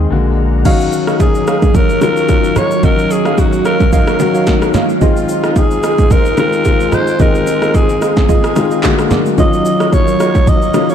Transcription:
Already playing: grand piano D#3 G#3 C4 F4 G#4, alto saxophone D#4, string machine G#4
0.10 sub bass A#1, grand piano D3 G#3 A#3 F#4, string machine D5 F#5 A#5
0.65 grand piano D#3 F#3 C#4 F5, string machine F#3 D#4 A#4 C#5 F5, synth stab F#4 C#5 D#5 F5, alto saxophone F#4, kick, crash, low conga, shaker
0.81 shaker
0.93 shaker
1.07 synth stab F#4 C#5 D#5 F5, cross-stick, shaker
1.20 alto saxophone G#4, kick, high bongo, shaker
1.35 shaker
1.47 synth stab F#4 C#5 D#5 F5, cross-stick, shaker
1.62 kick, low bongo, shaker
1.75 alto saxophone A#4, kick, low conga, shaker
1.89 shaker
2.01 grand piano D#3 F#3 C#4 F4, alto saxophone A#4, cross-stick, high bongo, low bongo, shaker
2.17 shaker
2.29 kick, high bongo, shaker
2.44 shaker
2.56 synth stab F#4 C#5 D#5 F5, alto saxophone C#5, cross-stick, low conga, shaker
2.71 shaker
2.83 grand piano D#3 F#3 C#4 D#4, synth stab F#4 C#5 D#5 F5, alto saxophone A#4, kick, low conga, shaker
2.99 shaker
3.11 alto saxophone G#4, shaker
3.25 synth stab F#4 C#5 D#5 F5, cross-stick, shaker
3.38 alto saxophone F#4, kick, high bongo, shaker
3.53 shaker
3.65 synth stab F#4 C#5 D#5 F5, alto saxophone A#4, cross-stick, shaker
3.80 kick, low bongo, shaker
3.92 synth stab F#4 C#5 D#5 F5, alto saxophone A#4, kick, low conga, shaker
4.07 cross-stick, shaker
4.19 grand piano D#3 F#3 C#4 F#4, high bongo, low bongo, shaker
4.34 synth stab F#4 C#5 D#5 F5, shaker
4.47 kick, snare, high bongo, shaker
4.62 cross-stick, shaker
4.74 synth stab F#4 C#5 D#5 F5, snare, low conga, shaker
4.89 shaker
5.01 grand piano D#3 G#3 C4 F4, synth stab F4 G#4 D#5, string machine F4 G#4 C5, alto saxophone F4, kick, low conga, shaker
5.17 shaker
5.29 shaker
5.44 synth stab F4 G#4 D#5, cross-stick, shaker
5.56 alto saxophone G#4, kick, high bongo, shaker
5.71 shaker
5.83 synth stab F4 G#4 D#5, cross-stick, shaker
5.98 kick, low bongo, shaker
6.11 alto saxophone A#4, kick, low conga, shaker
6.26 shaker
6.37 grand piano D#3 G#3 C4 F4, alto saxophone A#4, cross-stick, high bongo, low bongo, shaker
6.53 shaker
6.65 kick, high bongo, shaker
6.80 shaker
6.92 synth stab F4 G#4 D#5, alto saxophone C5, cross-stick, low conga, shaker
7.07 shaker
7.19 grand piano D#3 G#3 C4 D#4, synth stab F4 G#4 D#5, alto saxophone A#4, kick, low conga, shaker
7.35 shaker
7.47 low bongo, shaker
7.62 synth stab F4 G#4 D#5, cross-stick, shaker
7.74 alto saxophone G#4, kick, high bongo, shaker
7.89 shaker
8.01 synth stab F4 G#4 D#5, alto saxophone G#4, cross-stick, shaker
8.17 kick, snare, low bongo, shaker
8.29 synth stab F4 G#4 D#5, kick, low conga, shaker
8.44 cross-stick, shaker
8.56 grand piano D#3 G#3 C4 F4, cross-stick, high bongo, low bongo, shaker
8.71 synth stab F4 G#4 D#5, shaker
8.83 grand piano D3 G#3 A#3 F#4, string machine F#3 D4 A#4 F5, kick, snare, clap, high bongo, shaker
8.99 cross-stick, shaker
9.10 synth stab F#4 G#4 A#4 D5, snare, low conga, shaker
9.26 shaker
9.38 grand piano D#3 F#3 C#4 F4, string machine D#4 C#5 F5, synth stab F4 F#4 C#5 D#5, alto saxophone D#5, kick, low conga, shaker
9.53 shaker
9.66 shaker
9.80 synth stab F4 F#4 C#5 D#5, cross-stick, shaker
9.93 alto saxophone C#5, kick, high bongo, shaker
10.08 shaker
10.20 synth stab F4 F#4 C#5 D#5, cross-stick, shaker
10.35 kick, low bongo, shaker
10.47 alto saxophone D#5, kick, low conga, shaker
10.62 shaker
10.74 grand piano D#3 F#3 C#4 F4, cross-stick, high bongo, low bongo, shaker
10.89 alto saxophone C#5, shaker

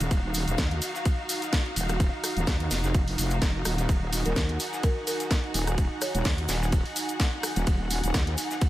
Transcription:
Already playing: analog synth pad D#4 F#4 F5, string section D#4 F#4 F5
0.00 wobble bass D#1, snare, closed hi-hat, cabasa
0.11 wobble bass D#1, kick, closed hi-hat, ride, cabasa
0.34 open hi-hat, ride, cabasa
0.48 wobble bass D#1, closed hi-hat, cabasa
0.58 wobble bass D#2, kick, snare, closed hi-hat, ride, cabasa
0.71 closed hi-hat
0.82 open hi-hat, ride, cabasa
0.95 snare, cabasa
1.05 kick, closed hi-hat, ride, cabasa
1.29 open hi-hat, ride, cabasa
1.42 snare, closed hi-hat, cabasa
1.53 kick, snare, closed hi-hat, ride, cabasa
1.66 ride
1.76 wobble bass D#1, open hi-hat, ride, cabasa
1.89 cross-stick, closed hi-hat, ride, cabasa
2.00 kick, closed hi-hat, ride, cabasa
2.24 cross-stick, open hi-hat, ride, cabasa
2.37 wobble bass D#1, closed hi-hat, cabasa
2.47 wobble bass D#2, kick, snare, closed hi-hat, open hi-hat, cabasa
2.60 closed hi-hat
2.71 wobble bass F1, snare, open hi-hat, ride, cabasa
2.84 snare, cabasa
2.94 kick, closed hi-hat, ride, cabasa
3.08 open hi-hat
3.18 wobble bass F1, open hi-hat, ride, cabasa
3.30 closed hi-hat, cabasa
3.42 wobble bass F1, kick, snare, closed hi-hat, ride, cabasa
3.65 wobble bass D#1, cross-stick, open hi-hat, ride, cabasa
3.78 snare, closed hi-hat, cabasa
3.89 wobble bass D#1, analog synth pad G#5, kick, closed hi-hat, ride, cabasa
4.13 open hi-hat, ride, cabasa
4.25 wobble bass D#1, marimba A#4, closed hi-hat, cabasa
4.33 wobble bass D#2, marimba A#4, string section F#5, kick, snare, closed hi-hat, ride, cabasa
4.49 closed hi-hat
4.60 open hi-hat, ride, cabasa
4.73 snare, cabasa
4.83 marimba A#4, kick, closed hi-hat, ride, cabasa
5.07 marimba A#4, open hi-hat, ride, cabasa
5.20 snare, closed hi-hat, cabasa
5.31 kick, snare, closed hi-hat, ride, cabasa
5.44 ride
5.54 wobble bass D#1, open hi-hat, ride, cabasa
5.67 cross-stick, closed hi-hat, ride, cabasa
5.78 kick, closed hi-hat, ride, cabasa
6.01 marimba C#5, cross-stick, open hi-hat, ride, cabasa
6.15 wobble bass D#1, marimba C#5, closed hi-hat, cabasa
6.25 wobble bass D#2, kick, snare, closed hi-hat, open hi-hat, cabasa
6.38 closed hi-hat
6.48 wobble bass D#1, snare, open hi-hat, ride, cabasa
6.62 snare, cabasa
6.72 kick, closed hi-hat, ride, cabasa
6.86 open hi-hat
6.96 open hi-hat, ride, cabasa
7.09 closed hi-hat, cabasa
7.20 kick, snare, closed hi-hat, ride, cabasa
7.43 cross-stick, open hi-hat, ride, cabasa
7.56 wobble bass D#1, snare, closed hi-hat, cabasa
7.67 wobble bass D#1, kick, closed hi-hat, ride, cabasa
7.91 open hi-hat, ride, cabasa
8.04 wobble bass D#1, closed hi-hat, cabasa
8.14 wobble bass D#2, kick, snare, closed hi-hat, ride, cabasa
8.27 closed hi-hat
8.38 open hi-hat, ride, cabasa
8.51 snare, cabasa
8.61 kick, closed hi-hat, ride, cabasa

